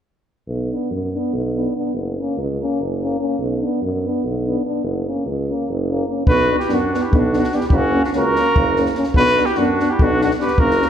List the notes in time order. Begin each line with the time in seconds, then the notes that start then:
0.48 B1
0.72 B3 D4
0.91 F#2
1.14 B3 D4
1.33 B1
1.56 B3 D4
1.76 B3 D4
1.93 F#1
2.18 A#3 C#4
2.37 C#2
2.61 A#3 C#4
2.79 F#1
3.01 A#3 C#4
3.20 A#3 C#4
3.38 B1
3.62 B3 D4
3.82 F#2
4.06 B3 D4
4.23 B1
4.47 B3 D4
4.64 B3 D4
4.83 F#1
5.06 A#3 C#4
5.26 C#2
5.49 A#3 C#4
5.68 F#1
5.90 A#3 C#4
6.07 A#3 C#4
6.26 B1 B3 D4 B4, kick
6.30 F#4
6.49 B3 D4
6.59 E4 G4, snare
6.69 F#2 B3 D4, snare
6.74 D4 F#4
6.93 B3 D4, snare
7.02 E4 G4
7.12 B1 B3 D4 F#4, kick
7.19 D4
7.33 B3 D4, snare
7.38 D4 F#4
7.44 snare
7.52 B3 D4 G4, snare
7.60 E4, snare
7.67 C#4 E4 G4, kick
7.72 F#1 A#3 F#4
7.76 C#4
7.94 A#3 C#4
8.04 D4 F#4, snare
8.13 C#2 A#3 C#4 F#4, snare
8.18 A#4
8.36 A#3 C#4, snare
8.56 F#1 A#3 C#4, kick
8.76 A#3 C#4, snare
8.86 snare
8.95 A#3 C#4, snare
9.03 snare
9.14 B1 B3 D4 B4, kick
9.19 F#4
9.37 B3 D4, snare
9.46 E4 G4, snare
9.55 F#2 B3 D4 F#4, snare
9.60 D4
9.80 B3 D4, snare
9.89 E4 G4
9.99 B1 B3 D4 F#4, kick
10.04 D4
10.21 B3 D4 F#4, snare
10.31 snare
10.39 B3 D4 G4 B4, snare
10.48 snare
10.57 F#1 A#3 C#4 F#4 A#4, kick
10.71 snare
10.81 A#3 C#4, snare